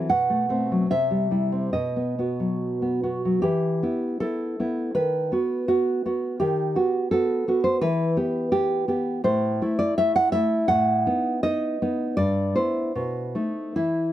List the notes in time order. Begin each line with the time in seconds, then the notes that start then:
0.10 B2 F#5
0.30 A3
0.49 A3 C4
0.72 F#3
0.91 C3 E5
1.11 G3
1.31 G3 E4
1.52 C4
1.73 B2 D#5
1.96 B3
2.19 B3 F#4
2.40 F#3
2.82 B3
3.03 B3 F#4
3.25 F#3
3.42 E3 G4
3.83 B3 E4
4.20 B3 E4 A4
4.60 B3 E4
4.95 D#3 B4
5.32 B3 F#4
5.68 B3 F#4
6.06 B3 F#4
6.40 D#3 G4
6.75 B3 F#4
7.11 B3 F#4 A4
7.48 B3 F#4
7.64 C5
7.81 E3 B4
8.17 B3 G4
8.52 B3 G4
8.88 B3 G4
9.24 A2 C5
9.62 A3 E4
9.79 D5
9.98 A3 E4 E5
10.16 F#5
10.32 A3 E4 E5
10.68 A2 F#5
11.07 B3 D#4
11.43 B3 D#4 D#5
11.82 B3 D#4
12.17 G2 D5
12.56 B3 E4 C5
12.95 B2
13.35 A3 D#4
13.76 E3 E4